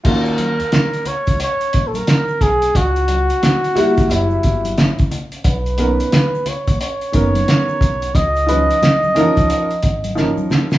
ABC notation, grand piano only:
X:1
M:4/4
L:1/8
Q:"Swing 16ths" 1/4=89
K:D#m
V:1 name="Grand piano"
[CDEF] z6 z | z3 [=G,A,=EF] [F,A,E=G] z3 | z [D,B,CA] z3 [D,B,CA]3 | z [E,CDB] z [=E,^E,CDA] z2 [E,CDA]2 |]